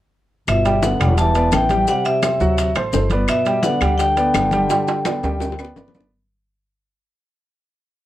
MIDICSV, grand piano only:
0, 0, Header, 1, 2, 480
1, 0, Start_track
1, 0, Key_signature, 1, "major"
1, 0, Tempo, 352734
1, 656, Time_signature, 4, 2, 24, 8
1, 10957, End_track
2, 0, Start_track
2, 0, Title_t, "Grand piano"
2, 0, Program_c, 0, 0
2, 884, Note_on_c, 0, 55, 80
2, 893, Note_on_c, 0, 67, 77
2, 899, Note_on_c, 0, 79, 78
2, 1083, Note_off_c, 0, 55, 0
2, 1089, Note_off_c, 0, 67, 0
2, 1092, Note_off_c, 0, 79, 0
2, 1136, Note_on_c, 0, 59, 57
2, 1140, Note_on_c, 0, 71, 59
2, 1144, Note_on_c, 0, 74, 53
2, 1330, Note_off_c, 0, 59, 0
2, 1332, Note_off_c, 0, 71, 0
2, 1335, Note_off_c, 0, 74, 0
2, 1355, Note_on_c, 0, 55, 80
2, 1362, Note_on_c, 0, 67, 73
2, 1366, Note_on_c, 0, 79, 77
2, 1752, Note_off_c, 0, 55, 0
2, 1756, Note_off_c, 0, 67, 0
2, 1758, Note_off_c, 0, 79, 0
2, 1844, Note_on_c, 0, 59, 78
2, 1845, Note_on_c, 0, 71, 73
2, 1852, Note_on_c, 0, 74, 70
2, 2236, Note_off_c, 0, 59, 0
2, 2237, Note_off_c, 0, 71, 0
2, 2241, Note_off_c, 0, 74, 0
2, 2315, Note_on_c, 0, 67, 78
2, 2317, Note_on_c, 0, 55, 72
2, 2325, Note_on_c, 0, 79, 85
2, 2514, Note_off_c, 0, 67, 0
2, 2515, Note_off_c, 0, 55, 0
2, 2520, Note_off_c, 0, 79, 0
2, 2555, Note_on_c, 0, 55, 72
2, 2557, Note_on_c, 0, 67, 83
2, 2565, Note_on_c, 0, 79, 75
2, 2949, Note_off_c, 0, 55, 0
2, 2950, Note_off_c, 0, 67, 0
2, 2955, Note_off_c, 0, 79, 0
2, 3030, Note_on_c, 0, 60, 61
2, 3037, Note_on_c, 0, 76, 57
2, 3039, Note_on_c, 0, 72, 63
2, 3230, Note_off_c, 0, 60, 0
2, 3234, Note_off_c, 0, 76, 0
2, 3235, Note_off_c, 0, 72, 0
2, 3272, Note_on_c, 0, 54, 79
2, 3277, Note_on_c, 0, 66, 86
2, 3281, Note_on_c, 0, 78, 72
2, 3666, Note_off_c, 0, 54, 0
2, 3669, Note_off_c, 0, 66, 0
2, 3672, Note_off_c, 0, 78, 0
2, 3756, Note_on_c, 0, 57, 63
2, 3763, Note_on_c, 0, 69, 70
2, 3763, Note_on_c, 0, 72, 76
2, 3952, Note_off_c, 0, 57, 0
2, 3956, Note_off_c, 0, 69, 0
2, 3956, Note_off_c, 0, 72, 0
2, 3997, Note_on_c, 0, 57, 65
2, 3997, Note_on_c, 0, 69, 68
2, 4002, Note_on_c, 0, 72, 72
2, 4192, Note_off_c, 0, 57, 0
2, 4193, Note_off_c, 0, 69, 0
2, 4196, Note_off_c, 0, 72, 0
2, 4244, Note_on_c, 0, 59, 70
2, 4245, Note_on_c, 0, 71, 75
2, 4247, Note_on_c, 0, 74, 73
2, 4633, Note_off_c, 0, 59, 0
2, 4634, Note_off_c, 0, 71, 0
2, 4635, Note_off_c, 0, 74, 0
2, 4708, Note_on_c, 0, 55, 84
2, 4714, Note_on_c, 0, 67, 83
2, 4717, Note_on_c, 0, 79, 79
2, 4907, Note_off_c, 0, 55, 0
2, 4911, Note_off_c, 0, 67, 0
2, 4912, Note_off_c, 0, 79, 0
2, 4947, Note_on_c, 0, 59, 62
2, 4950, Note_on_c, 0, 71, 61
2, 4957, Note_on_c, 0, 74, 60
2, 5147, Note_off_c, 0, 59, 0
2, 5149, Note_off_c, 0, 71, 0
2, 5153, Note_off_c, 0, 74, 0
2, 5188, Note_on_c, 0, 55, 85
2, 5192, Note_on_c, 0, 67, 81
2, 5196, Note_on_c, 0, 79, 83
2, 5584, Note_off_c, 0, 55, 0
2, 5587, Note_off_c, 0, 67, 0
2, 5589, Note_off_c, 0, 79, 0
2, 5669, Note_on_c, 0, 59, 77
2, 5672, Note_on_c, 0, 71, 67
2, 5673, Note_on_c, 0, 74, 73
2, 6066, Note_off_c, 0, 59, 0
2, 6068, Note_off_c, 0, 71, 0
2, 6068, Note_off_c, 0, 74, 0
2, 6157, Note_on_c, 0, 55, 80
2, 6163, Note_on_c, 0, 67, 79
2, 6166, Note_on_c, 0, 79, 86
2, 6354, Note_off_c, 0, 55, 0
2, 6358, Note_off_c, 0, 67, 0
2, 6359, Note_off_c, 0, 79, 0
2, 6395, Note_on_c, 0, 55, 78
2, 6399, Note_on_c, 0, 67, 77
2, 6405, Note_on_c, 0, 79, 73
2, 6791, Note_off_c, 0, 55, 0
2, 6793, Note_off_c, 0, 67, 0
2, 6796, Note_off_c, 0, 79, 0
2, 6876, Note_on_c, 0, 59, 61
2, 6880, Note_on_c, 0, 71, 57
2, 6885, Note_on_c, 0, 74, 58
2, 7075, Note_off_c, 0, 59, 0
2, 7077, Note_off_c, 0, 71, 0
2, 7080, Note_off_c, 0, 74, 0
2, 7122, Note_on_c, 0, 55, 80
2, 7123, Note_on_c, 0, 67, 79
2, 7131, Note_on_c, 0, 79, 81
2, 7517, Note_off_c, 0, 55, 0
2, 7517, Note_off_c, 0, 67, 0
2, 7522, Note_off_c, 0, 79, 0
2, 7613, Note_on_c, 0, 59, 69
2, 7614, Note_on_c, 0, 71, 74
2, 7621, Note_on_c, 0, 74, 68
2, 7806, Note_off_c, 0, 59, 0
2, 7807, Note_off_c, 0, 71, 0
2, 7811, Note_off_c, 0, 74, 0
2, 7853, Note_on_c, 0, 59, 66
2, 7856, Note_on_c, 0, 71, 71
2, 7857, Note_on_c, 0, 74, 69
2, 8047, Note_off_c, 0, 59, 0
2, 8049, Note_off_c, 0, 71, 0
2, 8049, Note_off_c, 0, 74, 0
2, 8091, Note_on_c, 0, 59, 76
2, 8097, Note_on_c, 0, 74, 70
2, 8101, Note_on_c, 0, 71, 72
2, 8286, Note_off_c, 0, 59, 0
2, 8290, Note_off_c, 0, 74, 0
2, 8293, Note_off_c, 0, 71, 0
2, 10957, End_track
0, 0, End_of_file